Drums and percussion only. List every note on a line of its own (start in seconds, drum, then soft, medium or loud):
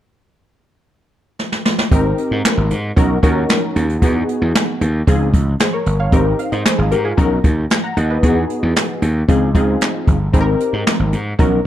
1.39 snare medium
1.52 snare medium
1.65 snare medium
1.79 snare medium
1.91 kick medium
1.91 closed hi-hat medium
2.18 closed hi-hat medium
2.45 snare loud
2.45 clap medium
2.45 closed hi-hat medium
2.70 closed hi-hat medium
2.97 kick loud
2.97 closed hi-hat medium
3.23 kick medium
3.23 closed hi-hat medium
3.49 snare medium
3.49 clap medium
3.49 closed hi-hat medium
3.76 closed hi-hat medium
3.89 closed hi-hat medium
4.02 kick loud
4.02 closed hi-hat medium
4.29 closed hi-hat medium
4.55 snare loud
4.55 clap medium
4.55 closed hi-hat medium
4.81 closed hi-hat medium
5.07 kick loud
5.07 closed hi-hat medium
5.34 kick loud
5.34 closed hi-hat medium
5.59 snare loud
5.59 clap medium
5.59 closed hi-hat medium
5.86 closed hi-hat medium
6.12 kick loud
6.12 closed hi-hat medium
6.39 closed hi-hat medium
6.52 closed hi-hat medium
6.65 snare loud
6.65 clap medium
6.65 closed hi-hat medium
6.91 closed hi-hat medium
7.18 kick loud
7.18 closed hi-hat medium
7.44 kick medium
7.44 closed hi-hat medium
7.70 snare medium
7.70 clap medium
7.70 closed hi-hat medium
7.97 closed hi-hat medium
8.23 kick medium
8.23 closed hi-hat medium
8.50 closed hi-hat medium
8.76 snare loud
8.76 clap medium
8.76 closed hi-hat medium
9.02 closed hi-hat medium
9.29 kick loud
9.29 closed hi-hat medium
9.55 kick medium
9.55 closed hi-hat medium
9.81 snare loud
9.81 clap medium
9.81 closed hi-hat medium
10.07 kick medium
10.07 closed hi-hat medium
10.34 kick medium
10.34 closed hi-hat medium
10.60 closed hi-hat medium
10.87 snare loud
10.87 clap medium
10.87 closed hi-hat medium
11.13 closed hi-hat medium
11.39 kick loud
11.39 closed hi-hat medium